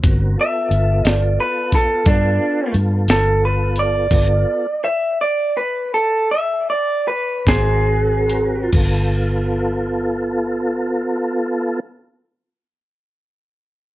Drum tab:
CC |------------|x-----------|x-----------|
HH |x-xx-xx-xx-x|x--------x-x|------------|
SD |---o-o---o--|---------o--|------------|
BD |o----oo-----|o--------o--|o-----------|